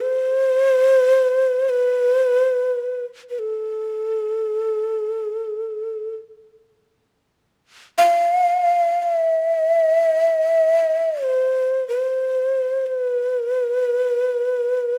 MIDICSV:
0, 0, Header, 1, 2, 480
1, 0, Start_track
1, 0, Tempo, 500000
1, 14381, End_track
2, 0, Start_track
2, 0, Title_t, "Shakuhachi"
2, 0, Program_c, 0, 77
2, 5, Note_on_c, 0, 72, 76
2, 1623, Note_on_c, 0, 71, 65
2, 1637, Note_off_c, 0, 72, 0
2, 2917, Note_off_c, 0, 71, 0
2, 3167, Note_on_c, 0, 71, 31
2, 3254, Note_on_c, 0, 69, 51
2, 3268, Note_off_c, 0, 71, 0
2, 5918, Note_off_c, 0, 69, 0
2, 7661, Note_on_c, 0, 77, 72
2, 8665, Note_off_c, 0, 77, 0
2, 8665, Note_on_c, 0, 77, 74
2, 8780, Note_off_c, 0, 77, 0
2, 8780, Note_on_c, 0, 76, 74
2, 10777, Note_on_c, 0, 72, 62
2, 10791, Note_off_c, 0, 76, 0
2, 11401, Note_off_c, 0, 72, 0
2, 11406, Note_on_c, 0, 72, 64
2, 12349, Note_off_c, 0, 72, 0
2, 12349, Note_on_c, 0, 72, 65
2, 12474, Note_off_c, 0, 72, 0
2, 12474, Note_on_c, 0, 71, 65
2, 14381, Note_off_c, 0, 71, 0
2, 14381, End_track
0, 0, End_of_file